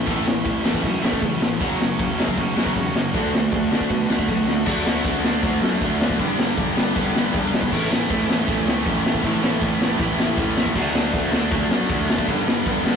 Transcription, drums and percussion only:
0.07 kick, crash
0.28 snare
0.45 kick, crash
0.65 snare
0.74 kick
0.84 kick, crash
1.05 snare
1.13 kick
1.22 kick, crash
1.42 snare
1.61 kick, crash
1.82 snare
1.99 kick, crash
2.20 snare
2.28 kick
2.38 kick, crash
2.58 snare
2.66 kick
2.76 kick, crash
2.96 snare
3.14 kick, crash
3.35 snare
3.52 kick, crash
3.72 snare
3.81 kick
3.89 kick, crash
4.10 snare
4.19 kick
4.27 kick, crash
4.48 snare
4.66 kick, crash
4.87 snare
5.04 kick, ride
5.24 snare
5.43 kick, ride
5.63 snare
5.81 kick, ride
6.01 snare
6.10 kick
6.19 kick, ride
6.40 snare
6.57 kick, ride
6.77 snare
6.96 kick, ride
7.16 snare
7.34 kick, ride
7.54 snare
7.63 kick
7.72 kick, crash
7.93 snare
8.10 kick, ride
8.30 snare
8.48 kick, ride
8.68 snare
8.86 kick, ride
9.06 snare
9.14 kick
9.24 kick, ride
9.44 snare
9.62 kick, ride
9.82 snare
10.00 kick, ride
10.20 snare
10.38 kick, ride
10.57 snare
10.66 kick
10.76 kick, crash
10.95 snare
11.13 kick, ride
11.33 snare
11.52 kick, ride
11.71 snare
11.89 kick, ride
12.10 snare
12.18 kick
12.28 kick, ride
12.48 snare
12.66 kick, ride
12.86 snare

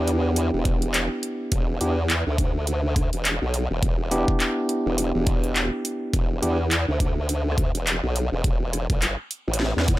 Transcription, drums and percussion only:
0.08 closed hi-hat
0.36 closed hi-hat
0.65 kick, closed hi-hat
0.82 closed hi-hat
0.94 clap, closed hi-hat
1.23 closed hi-hat
1.52 kick, closed hi-hat
1.81 closed hi-hat
2.10 clap, closed hi-hat
2.38 kick, closed hi-hat
2.67 closed hi-hat
2.96 kick, cross-stick, closed hi-hat
3.13 closed hi-hat
3.25 clap, closed hi-hat
3.54 closed hi-hat
3.83 kick, closed hi-hat
4.11 closed hi-hat
4.28 kick
4.40 clap, closed hi-hat
4.69 closed hi-hat
4.98 closed hi-hat
5.27 kick, closed hi-hat
5.44 closed hi-hat
5.56 clap, closed hi-hat
5.85 closed hi-hat
6.14 kick, closed hi-hat
6.43 closed hi-hat
6.71 clap, closed hi-hat
7.00 kick, closed hi-hat
7.29 closed hi-hat
7.52 cross-stick
7.58 kick, closed hi-hat
7.75 closed hi-hat
7.87 clap, closed hi-hat
8.16 closed hi-hat
8.44 kick, closed hi-hat
8.73 cross-stick, closed hi-hat
8.90 kick, closed hi-hat
9.02 clap, closed hi-hat
9.31 closed hi-hat
9.54 closed hi-hat
9.60 snare
9.79 snare
9.88 kick, closed hi-hat

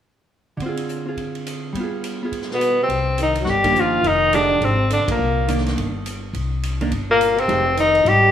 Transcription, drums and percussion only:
0.60 kick, ride
0.77 ride
0.89 hi-hat pedal
1.17 kick, ride
1.35 ride
1.47 hi-hat pedal, ride
1.75 kick, ride
2.04 hi-hat pedal, ride
2.32 kick, ride
2.42 snare
2.51 snare
2.61 hi-hat pedal, ride
2.89 kick, ride
3.18 hi-hat pedal, ride
3.35 ride
3.46 kick, snare
3.64 kick, ride
3.75 hi-hat pedal
4.04 kick, ride
4.33 hi-hat pedal, ride
4.61 kick, ride
4.90 hi-hat pedal, ride
5.08 kick, ride
5.48 hi-hat pedal, ride
5.58 snare
5.66 snare, ride
5.77 kick, ride
6.06 hi-hat pedal, ride
6.34 kick, ride
6.63 hi-hat pedal, ride
6.81 ride
6.91 kick, ride
7.21 hi-hat pedal, ride
7.38 ride
7.49 kick, ride
7.77 hi-hat pedal, ride
7.95 ride
8.06 kick, ride

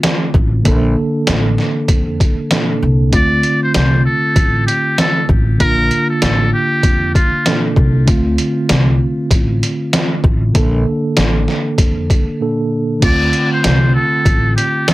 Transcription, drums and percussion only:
0.03 snare, closed hi-hat
0.34 kick
0.65 kick, closed hi-hat
1.27 snare, closed hi-hat
1.58 snare
1.88 kick, closed hi-hat
2.20 kick, closed hi-hat
2.51 snare, closed hi-hat
3.13 kick, closed hi-hat
3.43 closed hi-hat
3.74 snare, closed hi-hat
4.36 kick, closed hi-hat
4.68 closed hi-hat
4.98 snare, closed hi-hat
5.29 kick
5.60 kick, closed hi-hat
5.91 closed hi-hat
6.22 snare, closed hi-hat
6.83 kick, closed hi-hat
7.15 kick, closed hi-hat
7.46 snare, closed hi-hat
7.76 kick
8.08 kick, closed hi-hat
8.38 closed hi-hat
8.69 snare, closed hi-hat
9.31 kick, closed hi-hat
9.63 closed hi-hat
9.93 snare, closed hi-hat
10.24 kick
10.55 kick, closed hi-hat
11.17 snare, closed hi-hat
11.48 snare
11.78 kick, closed hi-hat
12.10 kick, closed hi-hat
13.02 kick, closed hi-hat, crash
13.33 closed hi-hat
13.64 snare, closed hi-hat
14.25 kick, closed hi-hat
14.58 closed hi-hat
14.88 snare, closed hi-hat

